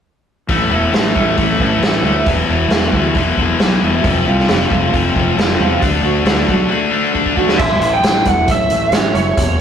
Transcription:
0.49 A1 A2 E3 A3, kick, open hi-hat
0.70 E1 A2 E3 A3 E4
0.93 A1 A2 E3 A3, snare, open hi-hat
1.15 A1 A2 E3 A3 E4, kick
1.37 A1 A2 E3 A3, kick, open hi-hat
1.60 A1 A2 E3 A3, kick
1.82 A1 A2 E3 A3 C#4, snare, open hi-hat
2.03 D2 A2 E3 A3 E4
2.26 E1 E2 B2 E3, kick, open hi-hat
2.47 E1 E2 B2 E3 E4
2.70 E1 E2 B2 E3 G#3, snare, open hi-hat
2.93 D2 E2 B2 E3 E4, kick
3.15 E1 E2 B2 E3 G#3, kick, open hi-hat
3.38 E1 E2 B2 E3, kick
3.59 B1 E2 B2 E3 B3, snare, open hi-hat
3.82 E1 E2 B2 E3 E4
4.03 F1 F2 C3 F3, kick, open hi-hat
4.26 C2 F2 C3 F3 F4
4.39 snare
4.48 F1 F2 C3 F3 A3, snare, open hi-hat
4.71 F1 F2 C3 F3 F4, kick
4.93 F1 F2 C3 F3 A3, kick, open hi-hat
5.16 F1 F2 C3 F3, kick
5.37 F1 F2 C3 F3 C4, snare, open hi-hat
5.58 E2 F2 C3 F3 F4
5.80 D2 D3 A3 D4, kick, open hi-hat
6.02 D2 D3 A3 D4 F#4
6.25 D2 D3 A3 D4, snare, open hi-hat
6.47 B1 D3 A3 D4 F#4, kick
6.69 D3 A3 D4
6.91 D3 A3 D4
7.13 D3 A3 D4, kick
7.26 kick
7.35 D3 A3 D4 F#4, kick
7.49 snare
7.59 A1 A2 E5, kick, crash
7.79 A1 E3, closed hi-hat
7.94 G5
8.03 A1 E3, snare, closed hi-hat
8.25 E1 A3 F#5, kick, closed hi-hat
8.48 A1 C#4 E5, kick, closed hi-hat
8.70 A1 A3, closed hi-hat
8.92 A1 C#4 C#5, snare, closed hi-hat
9.14 F#1 E4 C#5, closed hi-hat
9.37 E1 E2, kick, closed hi-hat

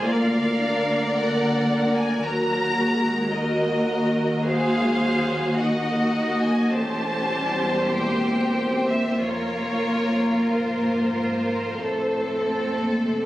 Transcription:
0.05 D2 A#3 F4 A#4 D5 F5
0.61 D4
1.15 A#3 D4 F#5
1.95 G#5
2.23 D#2 F#3 F#4 A#4 A#5
2.79 G#3
3.33 A#3 F#4 A#4 D#5
3.89 A#3
4.43 G#3 G#4 C5 F5
5.01 F#3
5.56 A#3 D#4 F#4 D#5 F#5
6.42 G#5
6.72 E1 E2 A3 C#4 G4 C5 A5
7.33 G3
7.95 A#3 C4 G5
8.89 E5
9.22 F1 F2 A#3 F4 A#4 C#5
10.51 G#2 C5
11.81 A2 A3 C4 A4
12.74 A#2
13.05 C3

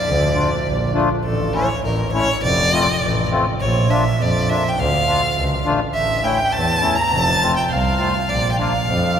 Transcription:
Already playing: D5
0.06 D2
0.35 A3 D4 F4
0.66 A#1
0.93 A3 D4 F4
1.24 A1 A4
1.53 A3 C#4 E4 C#5
1.83 A1 A#4
2.13 A3 C#4 E4 C#5
2.42 F1 D5
2.72 A3 C4 F4
3.02 A1
3.31 A3 C4 F4
3.60 A#1 C#5
3.90 A#3 D4 F4 E5
4.19 F2 D5
4.50 A#3 D4 F4 E5
4.69 G5
4.77 D2 F5
5.07 A3 D4 F4
5.36 C#2
5.65 A1 A3 D4 F4
5.94 A1 E5
6.23 A3 C#4 E4 G5
6.53 E2 A5
6.81 A3 C#4 E4
6.95 A#5
6.99 A#5
7.12 F1 A5 A#5
7.23 A5
7.42 A3 C4 F4
7.57 G5
7.71 C2 F5
7.99 A3 C4 F4
8.29 A#1 D5
8.52 G5
8.57 A#3 D4 F4 F5
8.61 F5
8.87 F2

